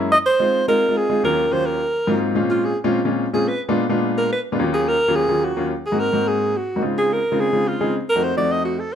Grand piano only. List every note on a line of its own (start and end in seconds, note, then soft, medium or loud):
0.00 0.12 F#2 medium
0.00 0.12 G#3 medium
0.00 0.12 A#3 medium
0.00 0.12 C#4 medium
0.00 0.12 E4 medium
0.40 0.59 G#3 medium
0.40 0.59 C4 medium
0.40 0.59 D#4 medium
0.40 0.59 F4 medium
0.68 0.82 G#3 medium
0.68 0.82 C4 medium
0.68 0.82 D#4 medium
0.68 0.83 F4 medium
0.89 1.03 G#3 medium
0.89 1.03 C4 medium
0.89 1.03 D#4 medium
0.89 1.03 F4 medium
1.09 1.19 G#3 medium
1.09 1.19 C4 medium
1.09 1.19 D#4 medium
1.09 1.19 F4 medium
1.24 1.43 D#2 medium
1.24 1.43 F#3 medium
1.24 1.43 A#3 medium
1.24 1.43 C#4 medium
1.24 1.43 F4 medium
1.51 1.79 D#2 medium
1.51 1.79 F#3 medium
1.51 1.79 A#3 medium
1.51 1.79 C#4 medium
1.51 1.79 F4 medium
2.07 2.35 G#2 medium
2.07 2.35 F#3 medium
2.07 2.35 A#3 medium
2.07 2.34 C4 medium
2.07 2.35 D#4 medium
2.07 2.34 F4 medium
2.35 2.69 A#2 medium
2.35 2.69 G#3 medium
2.35 2.69 C4 medium
2.35 2.69 C#4 medium
2.35 2.70 F4 medium
2.84 2.99 A#2 medium
2.84 2.99 G#3 medium
2.84 2.99 C4 medium
2.84 2.99 C#4 medium
2.84 2.99 F4 loud
3.05 3.25 A#2 medium
3.05 3.25 G#3 medium
3.05 3.25 C4 medium
3.05 3.25 C#4 medium
3.05 3.25 F4 medium
3.33 3.47 A#2 medium
3.33 3.47 G#3 medium
3.33 3.47 C4 medium
3.33 3.47 C#4 medium
3.33 3.47 F4 medium
3.68 3.83 A#2 loud
3.68 3.83 G#3 medium
3.68 3.83 B3 medium
3.68 3.83 D4 medium
3.68 3.83 F4 loud
3.89 4.28 A#2 medium
3.89 4.28 G#3 medium
3.89 4.28 B3 medium
3.89 4.28 D4 medium
3.89 4.29 F4 loud
4.52 4.57 A#2 medium
4.52 4.57 G#3 medium
4.52 4.57 B3 medium
4.52 4.57 D4 medium
4.52 4.57 F4 loud
4.59 4.93 D#2 medium
4.59 4.94 F#3 medium
4.59 4.94 A#3 medium
4.59 4.94 C#4 medium
4.59 4.94 F4 loud
5.08 5.23 D#2 medium
5.08 5.23 F#3 medium
5.08 5.23 A#3 medium
5.08 5.23 C#4 medium
5.08 5.23 F4 medium
5.28 5.48 D#2 medium
5.28 5.48 F#3 medium
5.28 5.48 A#3 medium
5.28 5.48 C#4 medium
5.28 5.48 F4 medium
5.57 5.71 D#2 medium
5.57 5.71 F#3 medium
5.57 5.71 A#3 medium
5.57 5.71 C#4 medium
5.57 5.71 F4 medium
5.92 6.07 G#2 medium
5.92 6.07 A#3 medium
5.92 6.07 C4 medium
5.92 6.07 D#4 medium
5.92 6.07 F#4 medium
6.13 6.52 G#2 medium
6.13 6.52 A#3 medium
6.13 6.52 C4 medium
6.13 6.52 D#4 medium
6.13 6.52 F#4 medium
6.76 6.81 G#2 medium
6.76 6.81 A#3 medium
6.76 6.81 C4 medium
6.76 6.81 D#4 medium
6.76 6.81 F#4 medium
6.82 7.17 C#3 medium
6.82 7.17 G#3 medium
6.82 7.17 C4 medium
6.82 7.17 D#4 medium
6.82 7.17 F4 medium
7.32 7.47 C#3 medium
7.32 7.47 G#3 medium
7.32 7.47 C4 medium
7.32 7.47 D#4 medium
7.32 7.47 F4 medium
7.53 7.72 C#3 medium
7.53 7.73 G#3 medium
7.53 7.73 C4 medium
7.53 7.72 D#4 medium
7.53 7.73 F4 medium
7.80 7.95 C#3 medium
7.80 7.95 G#3 medium
7.80 7.95 C4 medium
7.80 7.95 D#4 medium
7.80 7.95 G#4 medium
8.15 8.30 F2 medium
8.15 8.30 A3 medium
8.15 8.30 C4 medium
8.15 8.31 D#4 medium
8.15 8.31 F#4 medium
8.37 8.76 F2 medium
8.37 8.76 A3 medium
8.37 8.76 C4 medium
8.37 8.76 D#4 medium
8.37 8.76 F#4 medium